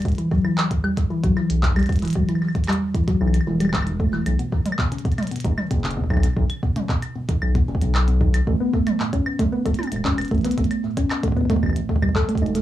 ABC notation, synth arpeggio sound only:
X:1
M:4/4
L:1/16
Q:1/4=114
K:Em
V:1 name="Synth arpeggio sound" clef=bass
z E, F, E, z E,, G, z E, F, E, z E,, G, z E, | F, E, z E,, G, z E, F, E, z E, G, E,, ^D, A, E, | z B,, ^D, z B,, ^C, B,, z B,, D, z B,, C, B,, z B,, | ^D, z B,, ^C, B,, z B,, D, z B,, C, B,, z B,, D, z |
A, B, A, z A,, ^C z A, B, A, z A,, C z A, B, | A, z A,, ^C z A, B, A, z A,, A, G, A A, ^D A, |]